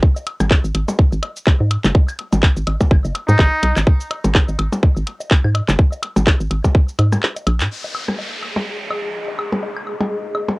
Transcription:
0.03 kick loud
0.16 low woodblock soft
0.16 shaker soft
0.27 closed hi-hat loud
0.27 high woodblock medium
0.40 0.57 G#1 loud
0.40 closed hi-hat soft
0.40 percussion blips medium
0.40 high woodblock medium
0.40 shaker soft
0.51 kick loud
0.51 clap medium
0.51 low woodblock soft
0.64 0.72 G#1 medium
0.64 shaker soft
0.75 0.85 G#1 medium
0.75 closed hi-hat medium
0.75 high woodblock soft
0.88 percussion blips medium
0.88 low woodblock soft
0.88 shaker soft
0.99 kick loud
1.12 1.20 G#1 loud
1.12 shaker soft
1.23 closed hi-hat medium
1.23 high woodblock medium
1.23 low woodblock soft
1.36 shaker medium
1.47 kick loud
1.47 clap medium
1.60 1.77 G#2 medium
1.60 low woodblock soft
1.71 closed hi-hat medium
1.71 high woodblock medium
1.84 1.92 F#1 loud
1.84 clap medium
1.84 percussion blips medium
1.84 shaker medium
1.95 kick loud
1.95 low woodblock soft
2.08 high woodblock medium
2.08 shaker soft
2.19 closed hi-hat medium
2.19 high woodblock soft
2.33 2.49 G#1 loud
2.33 closed hi-hat soft
2.33 percussion blips medium
2.33 low woodblock soft
2.33 shaker medium
2.43 kick loud
2.43 clap medium
2.57 2.64 G#1 medium
2.57 shaker soft
2.67 2.77 G#1 medium
2.67 closed hi-hat medium
2.67 high woodblock medium
2.67 low woodblock soft
2.80 kick medium
2.80 percussion blips medium
2.80 shaker medium
2.91 3.01 G#1 loud
2.91 kick loud
2.91 high woodblock medium
3.04 3.12 F#1 loud
3.04 low woodblock soft
3.04 shaker soft
3.15 closed hi-hat medium
3.15 high woodblock medium
3.28 3.36 G#2 loud
3.28 3.76 D#4 loud
3.28 percussion blips medium
3.28 shaker medium
3.39 3.49 G#1 loud
3.39 kick loud
3.39 clap medium
3.39 low woodblock soft
3.63 3.73 B1 loud
3.63 closed hi-hat medium
3.63 high woodblock soft
3.76 3.84 G#1 loud
3.76 clap medium
3.76 high woodblock medium
3.76 low woodblock soft
3.76 shaker medium
3.87 kick loud
4.00 shaker soft
4.11 closed hi-hat medium
4.11 high woodblock medium
4.11 low woodblock soft
4.24 4.41 G#1 loud
4.24 closed hi-hat soft
4.24 percussion blips medium
4.24 shaker medium
4.35 kick loud
4.35 clap loud
4.48 4.56 G#1 medium
4.48 low woodblock soft
4.48 shaker soft
4.59 4.69 G#1 medium
4.59 closed hi-hat medium
4.59 high woodblock medium
4.72 percussion blips medium
4.72 shaker medium
4.83 kick loud
4.83 low woodblock soft
4.97 5.04 G#1 medium
4.97 shaker soft
5.07 closed hi-hat medium
5.07 high woodblock soft
5.20 low woodblock soft
5.20 shaker medium
5.31 kick loud
5.31 clap medium
5.44 5.61 G#2 medium
5.44 high woodblock medium
5.55 closed hi-hat medium
5.55 high woodblock medium
5.55 low woodblock soft
5.68 5.76 F#1 loud
5.68 clap medium
5.68 percussion blips medium
5.68 shaker medium
5.79 kick loud
5.92 low woodblock soft
5.92 shaker soft
6.03 closed hi-hat medium
6.03 high woodblock medium
6.16 6.33 G#1 loud
6.16 closed hi-hat soft
6.16 percussion blips loud
6.16 shaker medium
6.27 kick loud
6.27 clap medium
6.27 high woodblock medium
6.27 low woodblock soft
6.40 6.48 G#1 medium
6.40 shaker soft
6.51 6.61 G#1 medium
6.51 closed hi-hat medium
6.51 high woodblock soft
6.64 kick medium
6.64 percussion blips loud
6.64 low woodblock soft
6.64 shaker medium
6.75 kick loud
6.89 shaker soft
6.99 7.17 G#2 medium
6.99 closed hi-hat medium
6.99 high woodblock medium
6.99 low woodblock soft
7.13 percussion blips medium
7.13 high woodblock medium
7.13 shaker medium
7.23 clap medium
7.36 closed hi-hat soft
7.36 low woodblock soft
7.36 shaker soft
7.47 7.62 A#1 loud
7.47 closed hi-hat medium
7.47 high woodblock medium
7.61 7.68 G#2 medium
7.61 clap medium
7.61 shaker medium
7.71 10.59 G#4 medium
7.71 downlifter medium
7.84 low woodblock soft
7.95 high woodblock medium
8.09 percussion blips medium
8.09 high woodblock medium
8.19 10.59 D#5 medium
8.19 low woodblock soft
8.43 high woodblock soft
8.56 percussion blips medium
8.56 low woodblock soft
8.91 high woodblock medium
8.91 low woodblock soft
9.28 low woodblock soft
9.39 high woodblock medium
9.52 percussion blips medium
9.63 low woodblock soft
9.76 high woodblock medium
9.87 high woodblock soft
10.00 percussion blips medium
10.00 low woodblock soft
10.35 high woodblock medium
10.35 low woodblock soft
10.48 percussion blips medium

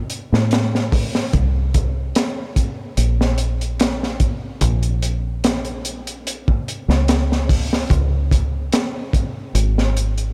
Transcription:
0.10 closed hi-hat medium
0.32 1.30 A2 medium
0.32 snare medium
0.51 snare loud
0.51 closed hi-hat medium
0.75 snare soft
0.92 kick loud
0.92 open hi-hat medium
1.15 snare medium
1.33 2.12 C2 medium
1.33 kick loud
1.33 closed hi-hat medium
1.74 kick medium
1.74 closed hi-hat medium
2.15 snare loud
2.15 closed hi-hat medium
2.56 kick medium
2.56 closed hi-hat medium
2.97 4.58 A#1 medium
2.97 closed hi-hat medium
3.21 snare soft
3.38 closed hi-hat medium
3.61 closed hi-hat soft
3.80 snare loud
3.80 closed hi-hat medium
4.03 snare soft
4.20 kick loud
4.20 closed hi-hat medium
4.61 6.64 A#1 medium
4.61 kick loud
4.61 closed hi-hat loud
4.83 closed hi-hat soft
5.02 closed hi-hat medium
5.44 snare loud
5.44 closed hi-hat medium
5.65 closed hi-hat soft
5.85 closed hi-hat medium
6.07 closed hi-hat medium
6.27 closed hi-hat medium
6.48 kick medium
6.68 closed hi-hat medium
6.88 7.87 C#2 medium
6.88 snare soft
7.08 snare loud
7.08 closed hi-hat medium
7.32 snare soft
7.49 kick loud
7.49 open hi-hat medium
7.73 snare medium
7.90 8.69 C#2 medium
7.90 kick loud
7.90 closed hi-hat medium
8.31 kick medium
8.31 closed hi-hat medium
8.72 snare loud
8.72 closed hi-hat medium
9.13 kick medium
9.13 closed hi-hat medium
9.55 10.33 G#1 medium
9.55 closed hi-hat medium
9.78 snare soft
9.97 closed hi-hat medium
10.18 closed hi-hat soft

